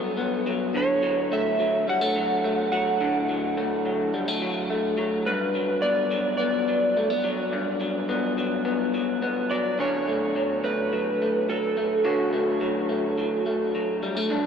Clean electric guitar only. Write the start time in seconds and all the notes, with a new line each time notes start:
Already playing: G2 F#3 B3
0.17 B3
0.46 F#3
0.74 D3
1.03 F#3
1.32 A3
1.60 F#3
1.87 G3
2.01 A3
2.16 F#3
2.44 A3
2.73 F#3
3.01 D3
3.29 F#3
3.57 A3
3.86 F#3
4.14 G3
4.28 A3
4.42 F#3
4.70 A3
4.97 F#3
5.27 G2
5.55 F#3
5.83 B3
6.11 F#3
6.39 B3
6.68 F#3
6.97 A3
7.10 B3
7.24 F#3
7.53 G2
7.80 F#3
8.09 B3
8.38 F#3
8.65 B3
8.94 F#3
9.22 B3
9.51 F#3
9.79 D3 C#4
10.08 A3
10.36 F#3
10.64 A3
10.93 F#3
11.22 A3
11.50 F#3
11.77 A3
12.04 D3 C#4
12.33 A3
12.61 F#3
12.89 A3
13.18 F#3
13.46 A3
13.75 F#3
14.03 G3
14.17 A3
14.30 G2 D4